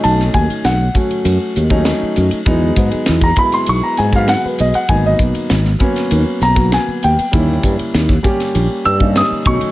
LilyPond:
<<
  \new Staff \with { instrumentName = "Grand piano" } { \time 4/4 \key dis \phrygian \tempo 4 = 99 a''8 gis''8 fis''4. r4. | r4 r16 ais''16 b''16 bis''16 cis'''16 ais''16 gis''16 eis''16 fis''16 b'16 dis''16 fis''16 | gis''16 dis''16 r2 ais''8 gis''8 g''8~ | g''8 r2 e'''8 dis'''8 cis'''8 | }
  \new Staff \with { instrumentName = "Grand piano" } { \time 4/4 \key dis \phrygian <fis a cis' dis'>4~ <fis a cis' dis'>16 r16 <fis a cis' fis'>4 r16 <fis a cis' dis'>4 r16 | <fis gis b dis'>4~ <fis gis b dis'>16 r16 <fis gis b e'>4 r16 <fis gis b fis'>4 r16 | <fis ais b dis'>4~ <fis ais b dis'>16 r16 <fis ais b cis'>4 r16 <fis ais b fis'>4 r16 | <g ais cis' e'>4~ <g ais cis' e'>16 r16 <g ais cis' g'>4 r16 <g ais cis' dis'>8. <fis a cis' dis'>8 | }
  \new Staff \with { instrumentName = "Fretless electric bass" } { \clef bass \time 4/4 \key dis \phrygian b,,8 dis,16 r16 b,,8 r8 fis,16 r16 dis,8. r16 fis,16 r16 | e,8 gis,16 r16 e,8 r8 b,,16 r16 gis,8. r16 b,,16 r16 | gis,,8 b,,16 r16 gis,,8 r8 dis,16 r16 b,,8. r16 dis,16 r16 | dis,8 g,16 r16 dis,8 r8 ais,,16 r16 g,8. r16 b,,16 r16 | }
  \new DrumStaff \with { instrumentName = "Drums" } \drummode { \time 4/4 <hhp cymr>16 sn16 <hhp bd cymr>16 cymr16 <hhp cymr sn>8 <hhp bd cymr>16 cymr16 <hhp cymr>8 <hhp cymr>16 <bd cymr>16 <hhp cymr sn>8 <hhp cymr>16 cymr16 | <hhp bd cymr>8 <hhp bd cymr>16 cymr16 <hhp cymr sn>16 <bd sn>16 <hhp bd cymr>16 <cymr sn>16 <hhp cymr>8 <hhp cymr sn>16 <bd sn>16 <hhp cymr sn>8 <hhp cymr>16 cymr16 | <hhp bd cymr>8 <hhp bd cymr>16 cymr16 <hhp cymr sn>16 sn16 <hhp bd cymr>16 <cymr sn>16 <hhp cymr>8 <hhp cymr sn>16 <bd cymr sn>16 <hhp cymr sn>8 <hhp cymr>16 cymr16 | <hhp bd cymr>8 <hhp bd cymr>16 cymr16 <hhp cymr sn>16 <bd sn>16 <hhp bd cymr>16 <cymr sn>16 <hhp cymr>8 <hhp cymr>16 bd16 <hhp cymr sn>8 <hhp bd cymr>16 cymr16 | }
>>